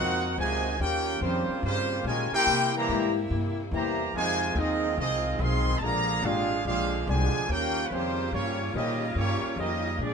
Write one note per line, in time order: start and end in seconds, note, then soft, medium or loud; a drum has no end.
0.00 0.37 F2 medium
0.00 0.25 G#2 medium
0.00 0.77 A#2 medium
0.00 0.26 F#3 medium
0.00 0.77 A#3 medium
0.00 0.26 C4 medium
0.00 0.38 C4 loud
0.00 0.38 D#4 loud
0.00 0.39 D#4 loud
0.00 0.77 D#4 loud
0.00 0.26 F4 medium
0.00 0.38 F#4 loud
0.00 0.77 F#4 medium
0.00 0.39 A#4 medium
0.00 0.37 C5 medium
0.00 0.39 F#5 loud
0.38 0.78 C#2 loud
0.38 0.67 G#2 medium
0.38 0.77 C3 loud
0.38 0.78 D#3 medium
0.38 0.67 F#3 medium
0.38 0.77 G#3 medium
0.38 0.67 C4 medium
0.38 0.67 F4 medium
0.38 0.77 F#4 medium
0.38 0.77 C5 medium
0.38 0.77 D#5 medium
0.38 0.77 G#5 loud
0.80 1.20 D#2 medium
0.80 2.46 C#3 medium
0.80 1.08 D#3 soft
0.80 2.46 G3 medium
0.80 1.22 A#3 loud
0.80 2.46 A#3 medium
0.80 1.22 C#4 medium
0.80 1.09 C#4 medium
0.80 2.46 F4 medium
0.80 1.21 F4 loud
0.80 1.22 G4 loud
0.80 1.09 G4 medium
0.80 1.23 A#4 medium
0.80 1.09 C5 medium
0.80 1.22 C#5 loud
0.80 1.22 G5 loud
1.21 1.47 F2 loud
1.21 1.61 C#3 medium
1.21 1.51 D#3 medium
1.21 1.61 G3 medium
1.21 1.61 A#3 medium
1.21 1.61 C4 medium
1.21 1.51 C#4 medium
1.21 1.61 F4 medium
1.21 1.61 G4 medium
1.21 1.51 G4 medium
1.21 1.61 C5 medium
1.21 1.51 C5 medium
1.48 muted upright bass stroke soft
1.63 2.04 G2 loud
1.63 2.03 C#3 medium
1.63 1.92 D#3 soft
1.63 2.03 G3 medium
1.63 2.03 A#3 medium
1.63 2.03 C4 medium
1.63 1.93 C#4 soft
1.63 2.03 F4 medium
1.63 2.03 G4 medium
1.63 1.93 G4 soft
1.63 2.03 C5 loud
1.63 1.93 C5 medium
2.04 2.30 A#2 loud
2.04 2.34 D#3 medium
2.04 2.31 G#3 loud
2.04 2.35 C#4 medium
2.04 2.32 F4 medium
2.04 2.35 G4 medium
2.04 2.31 A#4 medium
2.04 2.35 C5 medium
2.04 2.31 C#5 medium
2.04 2.31 G#5 loud
2.32 2.71 A#3 loud
2.32 2.71 E4 loud
2.32 2.72 E4 loud
2.32 2.72 G4 medium
2.32 2.72 A#4 loud
2.32 2.72 C5 loud
2.32 2.72 G5 loud
2.32 muted upright bass stroke soft
2.46 2.87 C3 medium
2.46 3.97 C3 medium
2.46 2.76 C3 soft
2.46 3.97 G3 medium
2.46 3.97 A#3 medium
2.46 2.76 A#3 soft
2.46 3.97 E4 medium
2.46 2.77 E4 soft
2.46 2.77 G4 medium
2.75 3.14 E3 loud
2.75 3.14 G3 loud
2.75 3.14 A#3 loud
2.75 3.14 G4 medium
2.75 3.14 C5 medium
2.75 3.14 E5 medium
2.75 3.14 A#5 loud
2.89 3.29 G#2 loud
2.89 3.18 C3 medium
2.89 3.18 A#3 medium
2.89 3.19 E4 medium
2.89 3.19 G4 medium
3.30 3.71 G2 loud
3.30 3.60 C3 medium
3.30 3.60 A#3 medium
3.30 3.61 E4 medium
3.30 3.61 G4 medium
3.71 4.13 E2 loud
3.71 4.01 C3 medium
3.71 4.11 E3 medium
3.71 4.11 G3 medium
3.71 4.11 A#3 medium
3.71 4.02 A#3 medium
3.71 4.02 E4 medium
3.71 4.02 G4 medium
3.71 4.13 G4 medium
3.71 4.13 C5 medium
3.71 4.13 E5 medium
3.71 4.12 A#5 medium
4.14 4.55 F2 medium
4.14 4.53 C3 loud
4.14 5.80 D#3 medium
4.14 4.53 D#3 medium
4.14 4.44 F3 soft
4.14 7.45 G#3 medium
4.14 4.53 G#3 loud
4.14 4.44 C4 soft
4.14 4.44 D#4 medium
4.14 5.80 F4 medium
4.14 4.55 F4 medium
4.14 4.45 G#4 medium
4.14 4.55 C5 loud
4.14 4.55 D#5 medium
4.14 4.54 G#5 loud
4.55 4.96 D#2 loud
4.55 4.85 F3 medium
4.55 4.98 G#3 medium
4.55 4.97 C4 medium
4.55 4.99 C4 medium
4.55 4.86 C4 medium
4.55 4.97 D#4 medium
4.55 4.86 D#4 medium
4.55 4.99 F4 medium
4.55 4.99 G#4 medium
4.55 4.86 G#4 medium
4.55 4.98 D#5 loud
4.98 5.38 C2 loud
4.98 5.27 F3 medium
4.98 5.37 G#3 medium
4.98 5.37 C4 medium
4.98 5.38 C4 medium
4.98 5.28 C4 soft
4.98 5.37 D#4 medium
4.98 5.28 D#4 soft
4.98 5.38 F4 medium
4.98 5.38 G#4 loud
4.98 5.28 G#4 medium
4.98 5.38 D#5 loud
5.39 5.80 B1 loud
5.39 5.77 D#3 loud
5.39 5.69 F3 medium
5.39 5.77 G#3 loud
5.39 5.77 C4 loud
5.39 5.69 C4 medium
5.39 5.69 D#4 medium
5.39 5.77 G#4 loud
5.39 5.69 G#4 medium
5.39 5.77 D#5 medium
5.39 5.77 F5 medium
5.39 5.77 C6 loud
5.78 6.22 A#1 medium
5.78 6.10 A#2 soft
5.78 7.47 D3 medium
5.78 7.47 G#4 medium
5.78 5.82 A5 medium
5.82 6.24 D3 loud
5.82 6.24 F3 loud
5.82 6.10 G#3 medium
5.82 6.24 A#3 medium
5.82 6.11 D4 medium
5.82 6.11 G4 soft
5.82 6.24 G#4 loud
5.82 6.24 D5 medium
5.82 6.23 F5 medium
5.82 6.24 A#5 loud
6.23 6.64 G#1 loud
6.23 6.53 A#2 medium
6.23 6.64 G#3 medium
6.23 6.53 G#3 medium
6.23 6.65 D4 medium
6.23 6.64 D4 loud
6.23 6.53 D4 medium
6.23 6.64 F4 loud
6.23 6.53 G4 medium
6.23 6.66 G#4 medium
6.23 6.66 C5 medium
6.23 6.65 F5 loud
6.65 7.06 A#1 loud
6.65 6.94 A#2 soft
6.65 7.04 G#3 medium
6.65 6.95 G#3 medium
6.65 7.04 D4 medium
6.65 7.05 D4 medium
6.65 6.95 D4 medium
6.65 7.04 F4 medium
6.65 6.95 G4 medium
6.65 7.05 G#4 loud
6.65 7.05 C5 medium
6.65 7.05 F5 loud
7.07 7.32 C2 loud
7.07 7.36 A#2 medium
7.07 7.49 D3 medium
7.07 7.49 F3 medium
7.07 7.49 G#3 medium
7.07 7.36 G#3 medium
7.07 7.37 D4 medium
7.07 7.49 F4 medium
7.07 7.37 G4 medium
7.07 7.50 C5 medium
7.07 7.50 D5 medium
7.07 7.50 G#5 loud
7.49 7.89 D#2 medium
7.49 9.98 C#3 medium
7.49 7.78 D#3 soft
7.49 9.98 G3 medium
7.49 7.86 A#3 loud
7.49 7.86 C#4 medium
7.49 7.78 C#4 medium
7.49 9.98 F4 loud
7.49 7.87 F4 loud
7.49 7.86 G4 medium
7.49 7.79 G4 medium
7.49 7.87 A#4 medium
7.49 7.79 C5 medium
7.49 7.87 C#5 medium
7.49 7.87 G5 loud
7.87 8.31 F2 medium
7.87 7.91 B4 medium
7.91 8.33 C#3 medium
7.91 8.20 D#3 medium
7.91 8.32 G3 medium
7.91 8.33 A#3 medium
7.91 8.33 C4 medium
7.91 8.20 C#4 medium
7.91 8.33 F4 medium
7.91 8.32 G4 medium
7.91 8.20 G4 medium
7.91 8.33 C5 medium
7.91 8.20 C5 medium
8.32 8.73 G2 loud
8.32 8.61 D#3 soft
8.32 8.72 G3 medium
8.32 8.72 A#3 medium
8.32 8.71 C#4 medium
8.32 8.61 C#4 soft
8.32 8.72 F4 medium
8.32 8.72 G4 medium
8.32 8.62 G4 medium
8.32 8.62 C5 medium
8.32 8.72 C#5 loud
8.74 9.15 A#2 loud
8.74 9.03 D#3 medium
8.74 9.13 G3 medium
8.74 9.13 A#3 medium
8.74 9.03 C#4 medium
8.74 9.14 C#4 medium
8.74 9.13 D#4 medium
8.74 9.03 G4 medium
8.74 9.14 G4 medium
8.74 9.14 A#4 medium
8.74 9.03 C5 medium
8.74 9.14 D#5 medium
9.15 9.41 G2 medium
9.15 9.45 D#3 soft
9.15 9.55 G3 medium
9.15 9.55 A#3 medium
9.15 9.56 A#3 medium
9.15 9.55 C#4 medium
9.15 9.45 C#4 soft
9.15 9.56 F4 medium
9.15 9.45 G4 soft
9.15 9.56 G4 medium
9.15 9.45 C5 soft
9.15 9.56 C#5 loud
9.42 muted upright bass stroke soft
9.56 9.98 F2 loud
9.56 9.86 D#3 medium
9.56 10.00 G3 medium
9.56 10.00 A#3 medium
9.56 9.87 C#4 medium
9.56 10.00 C#4 medium
9.56 10.00 D#4 medium
9.56 9.87 G4 medium
9.56 10.01 G4 medium
9.56 10.00 A#4 medium
9.56 9.87 C5 medium
9.56 10.00 D#5 medium
9.99 10.14 A#2 medium
9.99 10.14 A#2 soft
9.99 10.14 D3 medium
9.99 10.14 F3 medium
9.99 10.14 G#3 medium
9.99 10.14 G#3 soft
9.99 10.14 D4 medium
9.99 10.14 D4 soft
9.99 10.14 G4 medium
9.99 10.14 G#4 medium
10.04 10.14 C4 medium
10.04 10.14 F4 medium
10.04 10.14 G#4 medium
10.04 10.14 D5 medium